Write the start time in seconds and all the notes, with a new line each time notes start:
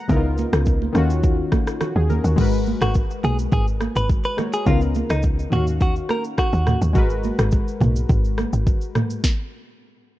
Already playing: F#5 A#5
0.08 C#2 C#3 B3 D#4 E4 A#4, kick, low conga, shaker
0.16 F4
0.38 high conga, shaker
0.53 C#2, cross-stick, shaker
0.65 kick, shaker
0.82 high conga
0.93 D#2 D#3 C#4 F4, cross-stick, high conga, shaker
0.98 F#4
1.10 shaker
1.23 kick, shaker
1.52 kick, cross-stick, high conga, shaker
1.67 cross-stick, shaker
1.81 F#4, cross-stick, low conga, shaker
1.96 D#2 G#4
2.10 A#4, high conga, low conga, shaker
2.24 D#2 F#4, shaker
2.36 G#1 G#3 F#4 A#4, kick, crash, low conga, shaker
2.41 B4
2.53 shaker
2.66 high conga, shaker
2.81 G#1 F#4, cross-stick, shaker
2.94 kick, shaker
3.11 shaker
3.24 B1 G#4, high conga, shaker
3.39 shaker
3.52 G#1 G#4, kick, shaker
3.67 shaker
3.81 cross-stick, high conga, shaker
3.96 G#1 B4, shaker
4.09 kick, shaker
4.24 B4, shaker
4.37 G#3 F#4 A#4 C#5, cross-stick, high conga, low conga, shaker
4.53 G#4, shaker
4.66 C#2 C#3 B3 D#4 F4 A#4, kick, low conga, shaker
4.81 shaker
4.95 high conga, shaker
5.10 C#2 D#4, cross-stick, shaker
5.22 kick, shaker
5.39 shaker
5.50 D#2 D#3 C#4 F#4 F5, mid tom, high conga, shaker
5.55 F#4
5.67 shaker
5.81 F#4, kick, shaker
5.96 shaker
6.09 A#4, cross-stick, high conga, shaker
6.24 shaker
6.38 F#4, kick, cross-stick, shaker
6.53 D#2, shaker
6.67 cross-stick, mid tom, high conga, low conga, shaker
6.82 D#2, shaker
6.93 G#1 G#3 F#4 A#4, kick, low conga, shaker
6.98 B4
7.10 shaker
7.23 high conga, shaker
7.39 G#1, cross-stick, shaker
7.51 kick, shaker
7.68 shaker
7.81 B1, mid tom, high conga, shaker
7.96 shaker
8.09 G#1, kick, shaker
8.25 shaker
8.38 cross-stick, high conga, shaker
8.53 G#1, shaker
8.67 kick, shaker
8.81 shaker
8.95 cross-stick, mid tom, high conga, low conga, shaker
9.10 shaker
9.24 kick, snare